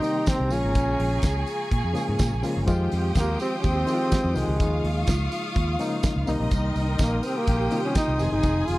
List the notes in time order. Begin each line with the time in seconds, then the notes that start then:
Already playing: C3 D#3 G3 A#3 D#4 G4 D#5 G5 A#5 C6
0.02 C3 D#3 G3 A#3 D#4, open hi-hat, tambourine
0.26 C4, kick, snare, closed hi-hat, tambourine
0.40 C2
0.50 A#1 C#3 F3 G#3 A#3 C#4 F4 G#4 F5 G#5 C#6, open hi-hat, tambourine
0.64 G#1
0.75 A#1, kick, closed hi-hat, tambourine
1.00 A#1, open hi-hat
1.22 C#2, kick, snare, closed hi-hat, tambourine
1.46 open hi-hat, tambourine
1.72 A#2, kick, closed hi-hat
1.84 F2
1.94 C#3 F3 G#3 A#3 G#4, open hi-hat, tambourine
2.09 G#2
2.19 A#2, kick, snare, closed hi-hat, tambourine
2.33 A#1
2.43 C#3 F3 G#3 A#3 F4, snare, open hi-hat, tambourine
2.57 G1
2.67 F2 D#3 F3 G#3 C4 F4 G4 G5 C6 D#6, kick, closed hi-hat, tambourine
2.92 F2, open hi-hat, tambourine
3.15 D#2 A#3, kick, snare, closed hi-hat, tambourine
3.39 C4, open hi-hat, tambourine
3.59 C#4
3.63 D#2 C4, kick, closed hi-hat, tambourine
3.86 D#3 F3 G#3 C4 E4, open hi-hat, tambourine
3.94 F4
4.12 kick, snare, closed hi-hat, tambourine
4.24 F2
4.34 C2 D#3 F3 G#3 C4 F4, snare, open hi-hat, tambourine
4.48 C#2
4.58 D#2 C#3 F3 G#3 A#3 D#4 F4 F5 C#6 D#6, kick, closed hi-hat, tambourine
4.84 D#2, open hi-hat
5.07 C#2, kick, snare, closed hi-hat, tambourine
5.32 open hi-hat, tambourine
5.55 D#2, kick, closed hi-hat, tambourine
5.79 C#3 F3 G#3 A#3 D#4, open hi-hat, tambourine
6.03 kick, snare, closed hi-hat, tambourine
6.16 C#2
6.27 C2 C3 D#3 G3 A#3 D#4 A#4 D#5 G5 C6 D#6, open hi-hat, tambourine
6.40 A#1
6.51 C2, kick, closed hi-hat, tambourine
6.76 C2, open hi-hat, tambourine
6.99 A#1 A#3, kick, snare, closed hi-hat, tambourine
7.23 C4 G4 G5, open hi-hat, tambourine
7.37 A#3
7.47 A#1, kick, closed hi-hat, tambourine
7.71 C3 D#3 G3 A#3 F4, open hi-hat, tambourine
7.84 C#4
7.95 D#4, kick, snare, closed hi-hat, tambourine
8.08 C2
8.19 F1 C3 D#3 F3 G#3 D#4 G#4 F5 G#5, snare, open hi-hat, tambourine
8.32 G1 D#4
8.43 F1, kick, closed hi-hat, tambourine
8.68 F1 F4, open hi-hat, tambourine